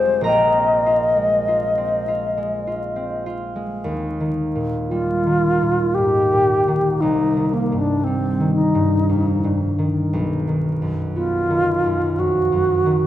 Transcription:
Already playing: F1 F2 G#3 C4 G4 A#4 C5 D5 D#5 F5 G5 G#5 A#5 C6
0.21 A#1 A#4 A#5
0.25 D#5 G5
0.56 C4
0.86 F4
1.17 G#3
1.48 F4
1.77 C4
2.08 F4
2.37 G#3
2.67 F4
2.96 C4
3.26 F4
3.56 G#3
3.84 D#2
4.20 D#3
4.56 A#2
4.89 G3 F4
5.26 D#3
5.62 A#2
5.95 G#2 G4
6.33 A#2
6.68 D#3
7.01 C2 D#4
7.37 D#3
7.54 A#3
7.72 G2
7.79 D4
8.04 G3 C4
8.40 D#3
8.55 D#4
8.75 G2
9.09 F2
9.44 G2
9.79 D#3
10.13 B1
10.48 D#3
10.82 F#2
11.15 B3 F4
11.50 D#3
11.84 F#2
12.18 F2 F#4
12.52 F#2
12.86 D#3

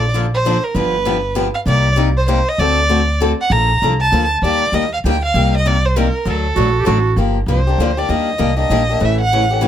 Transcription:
Already playing: A#1 D5
0.14 D3 F3 A#3 D4 A4
0.34 C5
0.45 D3 F3 A#3 D4 A4
0.64 A#4
0.74 G1 D3 F3 B3 D4 G4 B4
1.05 D3 F3 B3 D4 G4
1.35 D3 F3 B3 D4 G4
1.55 F5
1.66 C2 C3 G3 A#3 D#4 G4 D5
1.96 C3 G3 A#3 D#4 G4
2.17 C5
2.28 C3 G3 A#3 D#4 G4 C5
2.48 D#5
2.58 D2 D3 A3 C4 F#4 A4 D5
2.89 D3 A3 C4 F#4 A4
3.20 D3 A3 C4 F#4 A4
3.41 F#5
3.50 A#1 D3 F3 A#3 D4 A4 A#5
3.82 C2 D3 F3 A#3 D4 A4
4.01 A5
4.12 D2 D3 F3 A#3 D4 A4
4.42 D#2 D#3 G3 A#3 D4 G4 D5
4.72 D#2 D#3 G3 A#3 D4 G4 D#5
4.93 F5
5.04 D2 D#3 G3 A#3 D4 G4 G5
5.25 F5
5.34 C2 C3 G3 A#3 D#4 G4
5.57 D#5
5.65 C3 G3 A#3 D#4 G4 D5
5.86 C5
5.96 C3 G3 A#3 D#4 G4 A#4
6.25 D2 D3 F#3 A3 D4 F#4
6.30 A4
6.56 A#1 D3 F#3 A3 D4 F#4
6.81 G4
6.85 A1 D3 F#3 A3 D4 F#4
7.16 G1 D3 F3 A#3 D4 G4
7.46 C2 D3 F3 A#3 D4 G4 C5
7.67 A#3 D4 G4
7.78 D2 D3 F3 A#3 D4 G4
7.97 A#3 D4 G4 D5
8.09 D#2 D#3 G3 A#3 D4 G4 D#5
8.38 C2 D#3 G3 A#3 D4 G4
8.57 A#3 D4 G4 D#5
8.69 A#1 D#3 G3 A#3 D4 G4
8.89 A#3 D4 G4
9.00 A1 C#3 E3 A3 C#4 G4
9.05 E5
9.21 F#5
9.32 C#3 E3 A3 C#4 G4
9.51 A3 C#4 G4
9.61 C#3 E3 A3 C#4 G4

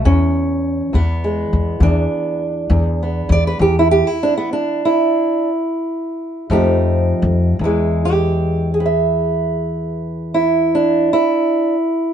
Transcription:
0.05 E2 C#4
0.93 E2 B3
1.24 G#3
1.53 E2
1.80 E2 D4
2.70 E2
3.03 B3
3.29 E2 D5
3.47 B4
3.59 E2 G4
3.79 E4
3.91 G4
4.07 E4
4.23 D4
4.38 B3
4.53 D4
4.85 E4
6.50 F2 F3 A3 D#4 G4
7.22 F2
7.59 E2
7.64 E3 G#3
8.05 G4
8.74 G#4
8.80 B4
8.86 E5
10.34 E4
10.75 D4
11.13 E4

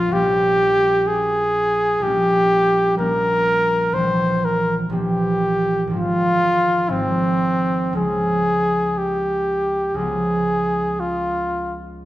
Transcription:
Already playing: A#1 F3 F4
0.08 A#1 G3 A#3
0.13 C#4 G4
1.07 G#4
2.00 A#1 G3 G4
2.04 A#3 C#4
2.96 A#1 G3 A#3 A#4
3.01 C#4
3.92 A#1 E3 G3 C5
3.98 C4
4.45 A#4
4.90 A#1 E3 G3 G4
4.95 C4
5.87 G#1 F3
5.93 G#3 C4 F4
6.89 G#1 F3 G#3 C4
7.93 C#2 F3 G#4
7.97 G#3 C#4
8.98 G4
9.94 C#2 F3 G#4
9.98 G#3 B3
11.00 F4

